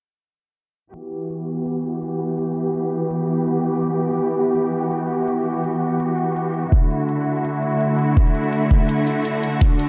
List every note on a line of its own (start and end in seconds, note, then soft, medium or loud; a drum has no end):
0.94 6.68 E3 medium
0.94 6.68 B3 medium
0.94 9.89 F#4 medium
0.94 6.68 G4 medium
0.94 closed hi-hat medium
1.12 closed hi-hat soft
1.30 closed hi-hat medium
1.66 closed hi-hat medium
1.84 closed hi-hat soft
2.02 closed hi-hat medium
2.20 closed hi-hat soft
2.38 closed hi-hat medium
2.56 closed hi-hat soft
2.75 closed hi-hat medium
3.11 closed hi-hat medium
3.29 closed hi-hat soft
3.47 closed hi-hat medium
3.65 closed hi-hat soft
3.83 closed hi-hat medium
4.01 closed hi-hat soft
4.19 closed hi-hat medium
4.55 closed hi-hat medium
4.73 closed hi-hat soft
4.91 closed hi-hat medium
5.10 closed hi-hat soft
5.28 closed hi-hat medium
5.46 closed hi-hat soft
5.64 closed hi-hat medium
6.00 closed hi-hat medium
6.18 closed hi-hat soft
6.36 closed hi-hat medium
6.54 closed hi-hat soft
6.72 9.89 D3 medium
6.72 9.89 A3 medium
6.72 9.59 E4 medium
6.72 kick loud
6.72 closed hi-hat medium
6.91 closed hi-hat soft
7.09 closed hi-hat medium
7.45 closed hi-hat medium
7.63 closed hi-hat soft
7.81 closed hi-hat medium
7.99 closed hi-hat soft
8.17 kick loud
8.17 closed hi-hat medium
8.35 closed hi-hat soft
8.53 closed hi-hat medium
8.71 kick medium
8.89 closed hi-hat medium
9.07 closed hi-hat soft
9.25 closed hi-hat medium
9.43 closed hi-hat soft
9.61 9.89 D4 medium
9.61 kick loud
9.61 closed hi-hat medium
9.79 closed hi-hat soft